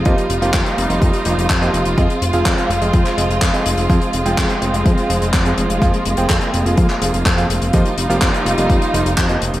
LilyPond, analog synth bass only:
\new Staff \with { instrumentName = "Analog synth bass" } { \clef bass \time 4/4 \key f \minor \tempo 4 = 125 f,16 r16 f,,16 f,,16 f,16 r16 f,,16 f,,16 f,16 r16 f,,16 f,,16 f,8 f,,16 f,,16 | f,16 r16 f,,16 f,,16 f,16 r16 f,,16 f,,16 f,16 r16 f,,16 f,,16 f,16 r16 f,,16 f,,16 | f,16 r16 f,,16 f,,16 f,16 r16 f,,16 f,,16 f,16 r16 f,,16 f,,16 f,8 f,,16 f,,16 | f,16 r16 f,,16 f,,16 f,16 r16 f,,16 f,,16 f,16 r16 f,,16 f,,16 f,8 f,,16 f,,16 |
f,16 r16 f,,16 f,,16 f,16 r16 f,,16 f,,16 f,16 r16 f,,16 f,,16 f,8 f,,16 f,,16 | }